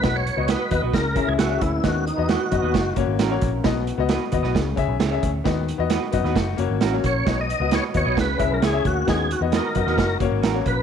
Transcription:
<<
  \new Staff \with { instrumentName = "Clean electric guitar" } { \time 4/4 \key b \major \tempo 4 = 133 r4 <fis' b' dis''>16 r8 <fis' b' dis''>16 r4 <gis' cis'' e''>16 r8. | r4 <fis' b' dis''>16 r8 <fis' b' dis''>16 r4 <cis' fis' ais'>16 r8. | r4 <fis' b' dis''>16 r8 <fis' b' dis''>16 r4 <gis' cis'' e''>16 r8. | r4 <fis' b' dis''>16 r8 <fis' b' dis''>16 r4 <cis' fis' ais'>16 r8. |
r4 <fis' b' dis''>16 r8 <fis' b' dis''>16 r4 <gis' cis'' e''>16 r8. | r4 <fis' b' dis''>16 r8 <fis' b' dis''>16 r4 <cis' fis' ais'>16 r8. | }
  \new Staff \with { instrumentName = "Tonewheel organ" } { \time 4/4 \key b \major b'16 cis''8. b'8 b'8 ais'8. gis'16 fis'8 e'8 | fis'8 dis'8 fis'4. r4. | r1 | r2. r8 cis''8~ |
cis''16 dis''8. cis''8 cis''8 b'8. ais'16 gis'8 fis'8 | gis'8 fis'8 ais'4. r4 b'8 | }
  \new Staff \with { instrumentName = "Grand piano" } { \time 4/4 \key b \major <b fis' dis''>8 r16 <b fis' dis''>8 r16 <b fis' dis''>8 r8 <cis' gis' e''>8 r16 <cis' gis' e''>8 r16 | <b fis' dis''>8 r16 <b fis' dis''>8 r16 <b fis' dis''>8 r8 <ais fis' cis''>8 r16 <ais fis' cis''>8 r16 | <b fis' dis''>8 r16 <b fis' dis''>8 r16 <b fis' dis''>8 r8 <cis' gis' e''>8 r16 <cis' gis' e''>8 r16 | <b fis' dis''>8 r16 <b fis' dis''>8 r16 <b fis' dis''>8 r8 <ais fis' cis''>8 r16 <ais fis' cis''>8 r16 |
<b fis' dis''>8 r16 <b fis' dis''>8 r16 <b fis' dis''>8 r8 <cis' gis' e''>8 r16 <cis' gis' e''>8 r16 | <b fis' dis''>8 r16 <b fis' dis''>8 r16 <b fis' dis''>8 r8 <ais fis' cis''>8 r16 <ais fis' cis''>8 r16 | }
  \new Staff \with { instrumentName = "Grand piano" } { \clef bass \time 4/4 \key b \major b,4. r8 cis4. r8 | dis4. r2 r8 | b,4. r8 cis4. r8 | dis4. r2 r8 |
b,4. r8 cis4. r8 | dis4. r2 r8 | }
  \new Staff \with { instrumentName = "Clean electric guitar" } { \time 4/4 \key b \major r2 r8 <cis' e'>8 <e' gis'>8 <ais cis'>8~ | <ais cis'>8 r4 <b dis'>8 <dis' fis'>8 <ais cis'>4. | r1 | r4. <b dis'>8 <dis' fis'>8 <ais cis'>4. |
r2 r8 <cis' e'>8 <e' gis'>8 <ais cis'>8~ | <ais cis'>8 r4 <b dis'>8 <dis' fis'>8 <ais cis'>4. | }
  \new Staff \with { instrumentName = "Picked electric bass" } { \clef bass \time 4/4 \key b \major b,,8. cis,8 r16 dis,16 b,,16 cis,8. cis,16 cis,8 d,8 | dis,8. e,8 r16 fis,16 dis,16 fis,,8 fis,,16 gis,,16 a,,8 ais,,8 | b,,8. cis,8 r16 dis,16 b,,16 cis,8 cis,16 b,,16 cis,8 d,8 | dis,8. e,8 r16 fis,16 dis,16 fis,,8 fis,,16 gis,,16 a,,8 ais,,8 |
b,,8. cis,8 r16 dis,16 b,,16 cis,8 cis,16 b,,16 cis,8 d,8 | dis,8. e,8 r16 fis,16 dis,16 fis,,8 fis,,16 gis,,16 a,,8 ais,,8 | }
  \new DrumStaff \with { instrumentName = "Drums" } \drummode { \time 4/4 <hh bd sn>8 hh8 <hh sn>8 <hh bd>8 <hh bd sn>8 <hh bd>8 <hh sn>8 <hh bd>8 | <hh bd sn>8 hh8 <hh sn>8 <hh bd>8 <hh bd sn>8 <hh bd>8 <hh sn>8 <hh bd>8 | <hh bd sn>8 hh8 <hh sn>8 <hh bd>16 sn16 <hh bd sn>8 <hh bd>8 <hh sn>8 <hh bd>8 | <hh bd sn>8 hh8 <hh sn>8 <hh bd>16 sn16 <hh bd sn>8 hh8 <hh sn>8 <hh bd>8 |
<hh bd sn>8 hh8 <hh sn>8 <hh bd>8 <hh bd sn>8 <hh bd>8 <hh sn>8 <hh bd>8 | <hh bd sn>8 hh8 <hh sn>8 <hh bd>16 sn16 <hh bd sn>8 <hh bd>8 <hh sn>8 <hh bd>8 | }
>>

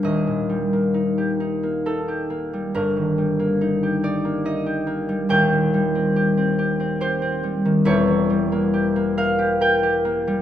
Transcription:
<<
  \new Staff \with { instrumentName = "Harp" } { \time 3/4 \key ees \lydian \tempo 4 = 70 <ees'' g''>2 a'4 | bes'4. d''8 ees''4 | \key c \dorian g''2 c''4 | cis''4. f''8 g''4 | }
  \new Staff \with { instrumentName = "Harp" } { \time 3/4 \key ees \lydian <ees,, ees, g bes g' bes'>16 bes,16 g16 bes16 ees'16 g'16 ees'16 bes16 ees'16 g'16 bes16 g16 | <g,, g,>16 ees16 g16 bes16 ees'16 g'16 ees'16 bes16 ees'16 g'16 bes16 g16 | \key c \dorian <ees,, ees,>16 ees16 g16 c'16 g'16 c'16 g'16 c'16 g'16 c'16 g16 ees16 | <e,, e,>16 e16 g16 bes16 g'16 bes16 bes'16 g'16 bes'16 g'16 bes16 g16 | }
>>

